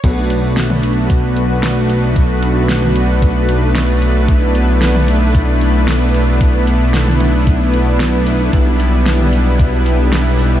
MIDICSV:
0, 0, Header, 1, 4, 480
1, 0, Start_track
1, 0, Key_signature, 2, "minor"
1, 0, Tempo, 530973
1, 33, Time_signature, 4, 2, 24, 8
1, 9582, End_track
2, 0, Start_track
2, 0, Title_t, "Supersaw synth"
2, 0, Program_c, 0, 81
2, 31, Note_on_c, 0, 57, 80
2, 31, Note_on_c, 0, 59, 74
2, 31, Note_on_c, 0, 71, 88
2, 32, Note_on_c, 0, 62, 71
2, 32, Note_on_c, 0, 66, 73
2, 3837, Note_off_c, 0, 66, 0
2, 3871, Note_on_c, 0, 64, 71
2, 7676, Note_off_c, 0, 57, 0
2, 7676, Note_off_c, 0, 71, 0
2, 7712, Note_on_c, 0, 55, 79
2, 7712, Note_on_c, 0, 71, 88
2, 9582, Note_off_c, 0, 55, 0
2, 9582, Note_off_c, 0, 59, 0
2, 9582, Note_off_c, 0, 62, 0
2, 9582, Note_off_c, 0, 64, 0
2, 9582, Note_off_c, 0, 71, 0
2, 9582, End_track
3, 0, Start_track
3, 0, Title_t, "Analog synth bass"
3, 0, Program_c, 1, 38
3, 34, Note_on_c, 1, 35, 91
3, 7690, Note_off_c, 1, 35, 0
3, 7713, Note_on_c, 1, 35, 89
3, 9582, Note_off_c, 1, 35, 0
3, 9582, End_track
4, 0, Start_track
4, 0, Title_t, "Drums"
4, 34, Note_on_c, 9, 36, 110
4, 34, Note_on_c, 9, 42, 97
4, 34, Note_on_c, 9, 49, 94
4, 124, Note_off_c, 9, 42, 0
4, 124, Note_off_c, 9, 49, 0
4, 125, Note_off_c, 9, 36, 0
4, 274, Note_on_c, 9, 42, 68
4, 364, Note_off_c, 9, 42, 0
4, 514, Note_on_c, 9, 38, 117
4, 514, Note_on_c, 9, 42, 92
4, 604, Note_off_c, 9, 38, 0
4, 604, Note_off_c, 9, 42, 0
4, 634, Note_on_c, 9, 47, 87
4, 724, Note_off_c, 9, 47, 0
4, 754, Note_on_c, 9, 42, 68
4, 844, Note_off_c, 9, 42, 0
4, 993, Note_on_c, 9, 42, 97
4, 994, Note_on_c, 9, 36, 114
4, 1084, Note_off_c, 9, 36, 0
4, 1084, Note_off_c, 9, 42, 0
4, 1233, Note_on_c, 9, 42, 66
4, 1324, Note_off_c, 9, 42, 0
4, 1473, Note_on_c, 9, 38, 115
4, 1473, Note_on_c, 9, 42, 97
4, 1564, Note_off_c, 9, 38, 0
4, 1564, Note_off_c, 9, 42, 0
4, 1713, Note_on_c, 9, 42, 69
4, 1804, Note_off_c, 9, 42, 0
4, 1953, Note_on_c, 9, 42, 97
4, 1954, Note_on_c, 9, 36, 121
4, 2044, Note_off_c, 9, 36, 0
4, 2044, Note_off_c, 9, 42, 0
4, 2193, Note_on_c, 9, 42, 70
4, 2284, Note_off_c, 9, 42, 0
4, 2433, Note_on_c, 9, 38, 118
4, 2433, Note_on_c, 9, 42, 97
4, 2524, Note_off_c, 9, 38, 0
4, 2524, Note_off_c, 9, 42, 0
4, 2553, Note_on_c, 9, 47, 88
4, 2644, Note_off_c, 9, 47, 0
4, 2673, Note_on_c, 9, 42, 69
4, 2763, Note_off_c, 9, 42, 0
4, 2913, Note_on_c, 9, 42, 95
4, 2914, Note_on_c, 9, 36, 124
4, 3003, Note_off_c, 9, 42, 0
4, 3004, Note_off_c, 9, 36, 0
4, 3153, Note_on_c, 9, 42, 68
4, 3244, Note_off_c, 9, 42, 0
4, 3393, Note_on_c, 9, 38, 124
4, 3393, Note_on_c, 9, 42, 96
4, 3484, Note_off_c, 9, 38, 0
4, 3484, Note_off_c, 9, 42, 0
4, 3633, Note_on_c, 9, 42, 68
4, 3723, Note_off_c, 9, 42, 0
4, 3873, Note_on_c, 9, 36, 121
4, 3873, Note_on_c, 9, 42, 95
4, 3964, Note_off_c, 9, 36, 0
4, 3964, Note_off_c, 9, 42, 0
4, 4113, Note_on_c, 9, 42, 68
4, 4204, Note_off_c, 9, 42, 0
4, 4354, Note_on_c, 9, 38, 121
4, 4354, Note_on_c, 9, 42, 93
4, 4444, Note_off_c, 9, 38, 0
4, 4444, Note_off_c, 9, 42, 0
4, 4473, Note_on_c, 9, 47, 93
4, 4564, Note_off_c, 9, 47, 0
4, 4594, Note_on_c, 9, 42, 67
4, 4684, Note_off_c, 9, 42, 0
4, 4833, Note_on_c, 9, 36, 121
4, 4834, Note_on_c, 9, 42, 95
4, 4924, Note_off_c, 9, 36, 0
4, 4924, Note_off_c, 9, 42, 0
4, 5074, Note_on_c, 9, 42, 64
4, 5164, Note_off_c, 9, 42, 0
4, 5313, Note_on_c, 9, 38, 127
4, 5313, Note_on_c, 9, 42, 94
4, 5404, Note_off_c, 9, 38, 0
4, 5404, Note_off_c, 9, 42, 0
4, 5553, Note_on_c, 9, 42, 67
4, 5644, Note_off_c, 9, 42, 0
4, 5793, Note_on_c, 9, 36, 124
4, 5793, Note_on_c, 9, 42, 93
4, 5883, Note_off_c, 9, 42, 0
4, 5884, Note_off_c, 9, 36, 0
4, 6033, Note_on_c, 9, 42, 67
4, 6124, Note_off_c, 9, 42, 0
4, 6273, Note_on_c, 9, 38, 122
4, 6273, Note_on_c, 9, 42, 87
4, 6363, Note_off_c, 9, 38, 0
4, 6363, Note_off_c, 9, 42, 0
4, 6392, Note_on_c, 9, 47, 93
4, 6483, Note_off_c, 9, 47, 0
4, 6513, Note_on_c, 9, 42, 64
4, 6513, Note_on_c, 9, 47, 64
4, 6603, Note_off_c, 9, 42, 0
4, 6603, Note_off_c, 9, 47, 0
4, 6752, Note_on_c, 9, 42, 87
4, 6753, Note_on_c, 9, 36, 124
4, 6843, Note_off_c, 9, 42, 0
4, 6844, Note_off_c, 9, 36, 0
4, 6993, Note_on_c, 9, 42, 64
4, 7084, Note_off_c, 9, 42, 0
4, 7233, Note_on_c, 9, 38, 123
4, 7233, Note_on_c, 9, 42, 93
4, 7323, Note_off_c, 9, 38, 0
4, 7323, Note_off_c, 9, 42, 0
4, 7473, Note_on_c, 9, 42, 62
4, 7564, Note_off_c, 9, 42, 0
4, 7713, Note_on_c, 9, 36, 117
4, 7713, Note_on_c, 9, 42, 91
4, 7804, Note_off_c, 9, 36, 0
4, 7804, Note_off_c, 9, 42, 0
4, 7953, Note_on_c, 9, 42, 65
4, 8044, Note_off_c, 9, 42, 0
4, 8193, Note_on_c, 9, 38, 113
4, 8193, Note_on_c, 9, 42, 85
4, 8284, Note_off_c, 9, 38, 0
4, 8284, Note_off_c, 9, 42, 0
4, 8313, Note_on_c, 9, 47, 90
4, 8403, Note_off_c, 9, 47, 0
4, 8434, Note_on_c, 9, 42, 64
4, 8524, Note_off_c, 9, 42, 0
4, 8673, Note_on_c, 9, 36, 121
4, 8674, Note_on_c, 9, 42, 89
4, 8763, Note_off_c, 9, 36, 0
4, 8764, Note_off_c, 9, 42, 0
4, 8914, Note_on_c, 9, 42, 62
4, 9004, Note_off_c, 9, 42, 0
4, 9153, Note_on_c, 9, 38, 119
4, 9153, Note_on_c, 9, 42, 89
4, 9244, Note_off_c, 9, 38, 0
4, 9244, Note_off_c, 9, 42, 0
4, 9394, Note_on_c, 9, 46, 78
4, 9484, Note_off_c, 9, 46, 0
4, 9582, End_track
0, 0, End_of_file